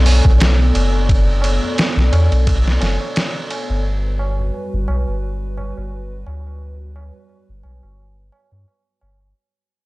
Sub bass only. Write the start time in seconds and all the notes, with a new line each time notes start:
Already playing: B1
0.25 B1
0.75 F#1
1.97 B1
2.12 E2
2.31 B1
2.81 F#1
3.69 G1
4.73 G1
4.89 B1
5.08 G1
5.77 G1
6.27 D2
7.49 G1
7.64 B1
7.83 G1
8.52 G2
9.02 G1